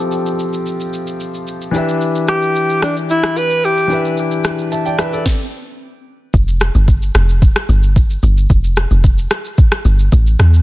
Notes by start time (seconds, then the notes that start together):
Already playing: F3 C4 G4 A4 G5
0.12 shaker
0.26 shaker
0.39 shaker
0.53 shaker
0.66 shaker
0.80 shaker
0.94 shaker
1.07 shaker
1.20 shaker
1.34 shaker
1.47 shaker
1.62 shaker
1.71 E3 D4 G4, shaker
1.76 B4 E5
1.89 shaker
2.01 shaker
2.15 shaker
2.28 G4, cross-stick, shaker
2.42 shaker
2.55 shaker
2.70 shaker
2.82 D4, cross-stick, shaker
2.97 shaker
3.10 E4, shaker
3.23 cross-stick, shaker
3.37 B4, shaker
3.50 shaker
3.64 G4, shaker
3.78 shaker
3.87 E3 D4 G4, shaker
3.92 B4 E5
4.05 shaker
4.17 shaker
4.31 shaker
4.44 cross-stick, shaker
4.59 shaker
4.72 E5 A5, shaker
4.86 D5 G5, shaker
4.99 B4 E5, cross-stick, shaker
5.13 A4 D5, shaker
5.26 kick, snare
6.34 F1, kick, shaker
6.48 shaker
6.61 cross-stick, shaker
6.75 G1, shaker
6.88 kick, shaker
7.02 shaker
7.15 F1, cross-stick, shaker
7.29 shaker
7.42 kick, shaker
7.56 cross-stick, shaker
7.69 G1, shaker
7.83 shaker
7.96 kick, shaker
8.10 shaker
8.23 G1, shaker
8.38 shaker
8.50 F1, kick, shaker
8.64 shaker
8.77 cross-stick, shaker
8.91 F1, shaker
9.04 kick, shaker
9.18 shaker
9.31 cross-stick, shaker
9.45 shaker
9.58 kick, shaker
9.72 cross-stick, shaker
9.85 G1, shaker
9.99 shaker
10.12 A1, kick, shaker
10.27 shaker
10.39 E2, cross-stick, shaker
10.54 shaker